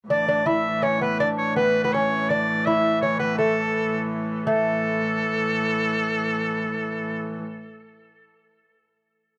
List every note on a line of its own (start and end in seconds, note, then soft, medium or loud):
0.10 4.48 A2 medium
0.10 4.48 E3 medium
0.10 0.27 D4 medium
0.10 0.48 D5 medium
0.28 0.45 D4 medium
0.46 0.84 E4 medium
0.46 0.85 E5 medium
0.83 1.01 C#4 medium
0.83 1.01 C#5 medium
1.01 1.20 B3 medium
1.01 1.19 B4 medium
1.20 1.58 D4 medium
1.20 1.28 D5 medium
1.38 1.55 C#5 medium
1.56 1.83 B3 medium
1.56 1.82 B4 medium
1.83 1.94 B3 medium
1.83 1.94 B4 medium
1.93 2.31 C#4 medium
1.93 2.30 C#5 medium
2.29 2.67 D4 medium
2.29 2.67 D5 medium
2.66 3.04 E4 medium
2.66 3.01 E5 medium
3.01 3.19 C#4 medium
3.01 3.19 C#5 medium
3.19 3.38 B3 medium
3.19 3.36 B4 medium
3.38 4.07 A3 medium
3.38 4.06 A4 medium
4.46 7.41 A2 medium
4.46 7.41 E3 medium
4.46 7.58 A3 medium
4.46 7.36 A4 medium